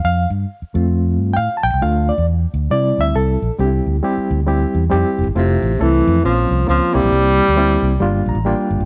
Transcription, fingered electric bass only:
X:1
M:4/4
L:1/16
Q:"Swing" 1/4=136
K:F
V:1 name="Fingered electric bass" clef=bass
F,,2 G,,2 z2 F,,4 G,,2 A,, z B,,, C,, | D,,3 E,,3 D,,2 C,2 D,,2 C,,2 B,,, z | C,,2 D,,2 z2 D,,4 E,,2 F,, z F,,, G,,, | F,,,2 A,,,2 C,,2 F,,2 B,,,2 C,,2 _D,, z C,, B,,, |
C,,3 D,,3 C,,2 G,,,2 B,,, A,,,2 z G,,, G,,, |]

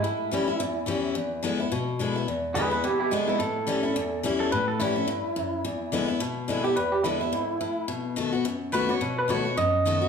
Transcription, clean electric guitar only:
X:1
M:4/4
L:1/8
Q:"Swing" 1/4=214
K:A
V:1 name="Clean electric guitar"
E6 z2 | z8 | z2 [GB] [GB] [E=G] [EG] [^G,E] [G,E] | A6 z A |
B A E6 | z6 z =G | B =G E6 | z6 B c- |
c B c2 ^d4 |]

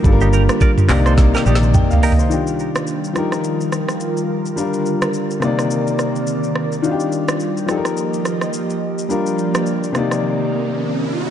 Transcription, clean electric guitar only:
X:1
M:4/4
L:1/16
Q:"Swing 16ths" 1/4=106
K:Cdor
V:1 name="Clean electric guitar"
z [EG] [GB] z [Bd] z [GB] [Ac] z [GB] [EG] z3 [GB] z | z16 | z16 | z16 |
z16 |]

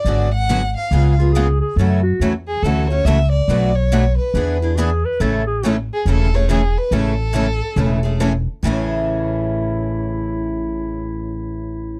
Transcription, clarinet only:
X:1
M:4/4
L:1/16
Q:"Swing" 1/4=140
K:A
V:1 name="Clarinet"
z8 z2 ^E2 G2 G2 | A2 F3 z8 z3 | z8 z2 E2 G2 B2 | A2 G3 z8 z3 |
z16 | E16- | E16 |]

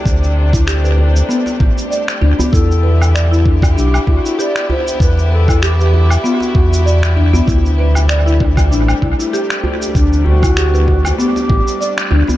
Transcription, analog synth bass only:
X:1
M:4/4
L:1/8
Q:"Swing 16ths" 1/4=97
K:Dmix
V:1 name="Analog synth bass" clef=bass
D,,4 z A,,, z D,, | E,,4 B,,, D,, z2 | E,,4 z E,,3 | D,,4 A,,, C,, z2 |
D,,4 z A,,, z D,, |]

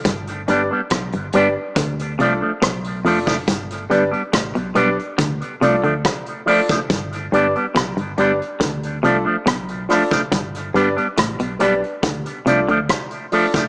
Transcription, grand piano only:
X:1
M:4/4
L:1/16
Q:1/4=70
K:Ddor
V:1 name="Grand piano"
z2 [DGBd] z3 [DGBd] z3 [DFAd] z3 [DFAd] z | z2 [DGBd] z3 [DGBd] z3 [DFAd] z3 [DFAd] z | z2 [DGBd] z3 [DGBd] [Bd] z2 [DFAd] z3 [DFAd] z | z2 [DGBd] z3 [DGBd] [Bd] z2 [DFAd] z3 [DFAd] z |]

